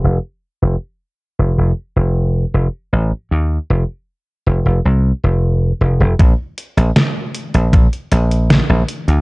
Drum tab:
HH |----------------|----------------|x-xxx-xxxxxxx-xx|
SD |----------------|----------------|----o-------o---|
BD |----------------|----------------|o-------o-------|